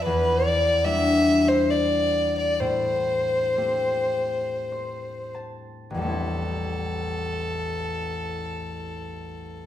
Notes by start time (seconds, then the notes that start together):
Already playing: A3 C4 F4
0.03 E2 B4
0.45 D5
0.84 G3 D4 E4 E5
1.48 C5
1.70 D5
2.38 D5
2.60 A2 C5
3.57 A3 C4 G4
4.72 C5
5.35 A5
5.90 A1 E2
5.97 G3 A4
6.01 A3 C4
6.08 E4